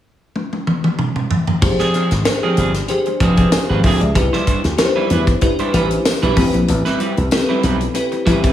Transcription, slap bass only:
1.62 1.75 F1 loud
2.11 2.22 G#1 medium
2.57 2.81 G1 medium
3.20 3.44 F1 medium
3.70 3.80 G#1 medium
3.84 3.97 D2 medium
4.01 4.12 C#2 medium
4.15 4.28 C2 loud
4.64 4.75 D2 medium
5.10 5.34 E2 medium
5.73 5.97 A1 medium
6.22 6.33 B1 medium
6.37 6.49 A1 loud
6.54 6.65 A#1 medium
6.69 6.81 A1 loud
7.18 7.28 C2 medium
7.63 7.87 B1 medium
8.27 8.50 A1 medium

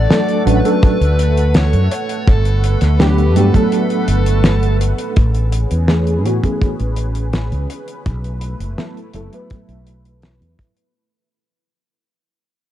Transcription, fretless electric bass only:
0.47 0.61 A1 loud
0.83 muted fretless electric bass stroke soft
1.01 1.73 D2 medium
1.73 1.87 F#2 medium
2.27 2.75 G1 loud
2.82 3.36 D2 medium
3.36 3.50 G2 medium
4.08 4.92 G1 medium
5.17 5.64 A1 medium
5.71 6.25 E2 medium
6.25 6.39 A2 medium
6.62 muted fretless electric bass stroke soft
6.80 7.52 A1 medium
7.52 7.66 C#2 medium
8.06 8.54 B1 loud
8.60 8.74 F#1 medium
9.14 9.28 F#1 medium
9.69 10.40 B1 medium
10.41 10.55 E2 medium

